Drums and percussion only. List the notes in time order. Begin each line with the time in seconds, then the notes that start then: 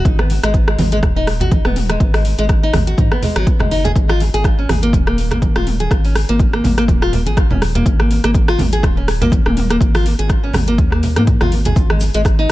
0.05 kick, closed hi-hat
0.19 cross-stick, high conga
0.30 open hi-hat, muted conga
0.43 cross-stick, closed hi-hat
0.54 kick, closed hi-hat, muted conga
0.68 cross-stick
0.79 open hi-hat, mid tom, muted conga, high conga, low conga
0.92 closed hi-hat
1.03 kick, cross-stick, closed hi-hat, muted conga, low conga
1.27 cross-stick, open hi-hat
1.40 closed hi-hat, muted conga, low conga
1.51 kick, closed hi-hat, high conga
1.64 cross-stick, mid tom, muted conga
1.76 open hi-hat, mid tom
1.90 cross-stick, closed hi-hat, muted conga
2.00 kick, closed hi-hat
2.14 cross-stick, open hi-hat
2.25 open hi-hat, muted conga
2.39 closed hi-hat
2.49 kick, cross-stick, closed hi-hat, muted conga
2.73 cross-stick, open hi-hat, mid tom, muted conga, high conga, low conga
2.87 closed hi-hat
2.97 kick, closed hi-hat, muted conga, high conga
3.12 cross-stick
3.22 open hi-hat, low conga
3.36 cross-stick, closed hi-hat, muted conga
3.47 kick, closed hi-hat
3.60 cross-stick, mid tom, muted conga, low conga
3.71 open hi-hat
3.84 closed hi-hat, muted conga, low conga
3.96 kick, closed hi-hat
4.09 cross-stick, high conga
4.20 open hi-hat, muted conga
4.34 closed hi-hat
4.44 kick, cross-stick, closed hi-hat, muted conga
4.69 cross-stick, open hi-hat, mid tom, muted conga, high conga, low conga
4.83 closed hi-hat
4.93 kick, closed hi-hat, muted conga, low conga
5.07 cross-stick
5.18 open hi-hat
5.31 cross-stick, closed hi-hat, muted conga, low conga
5.42 kick, closed hi-hat, high conga
5.56 cross-stick, mid tom, muted conga
5.67 open hi-hat, mid tom
5.80 closed hi-hat, muted conga
5.91 kick, cross-stick, closed hi-hat
6.05 open hi-hat
6.15 cross-stick, open hi-hat, muted conga
6.29 closed hi-hat
6.39 kick, closed hi-hat, muted conga
6.53 cross-stick
6.64 open hi-hat, mid tom, muted conga, high conga, low conga
6.78 cross-stick, closed hi-hat
6.88 kick, closed hi-hat, muted conga, high conga
7.02 cross-stick
7.13 open hi-hat, low conga
7.26 closed hi-hat, muted conga
7.37 kick, cross-stick, closed hi-hat
7.50 mid tom, muted conga, low conga
7.62 cross-stick, open hi-hat
7.75 closed hi-hat, muted conga, low conga
7.86 kick, closed hi-hat
8.00 cross-stick, high conga
8.11 open hi-hat, muted conga
8.24 cross-stick, closed hi-hat
8.34 kick, closed hi-hat, muted conga
8.48 cross-stick
8.58 open hi-hat, mid tom, muted conga, high conga, low conga
8.73 closed hi-hat
8.83 kick, cross-stick, closed hi-hat, muted conga, low conga
9.08 cross-stick, open hi-hat
9.21 closed hi-hat, muted conga, low conga
9.32 kick, closed hi-hat, high conga
9.46 cross-stick, mid tom, muted conga
9.57 open hi-hat, mid tom
9.70 cross-stick, closed hi-hat, muted conga
9.81 kick, closed hi-hat
9.95 cross-stick, open hi-hat, high conga
10.06 open hi-hat, muted conga
10.19 closed hi-hat
10.29 kick, cross-stick, closed hi-hat, muted conga
10.53 cross-stick, open hi-hat, mid tom, muted conga, high conga, low conga
10.68 closed hi-hat
10.78 kick, closed hi-hat, muted conga, high conga
10.92 cross-stick
11.03 open hi-hat, low conga
11.16 cross-stick, closed hi-hat, mid tom, muted conga, high conga
11.27 kick, closed hi-hat
11.41 cross-stick, mid tom, muted conga, low conga
11.52 open hi-hat
11.65 closed hi-hat, muted conga, low conga
11.76 kick, closed hi-hat, shaker
11.90 cross-stick, high conga
12.01 open hi-hat, muted conga, shaker
12.14 closed hi-hat, shaker
12.25 kick, cross-stick, closed hi-hat, muted conga, shaker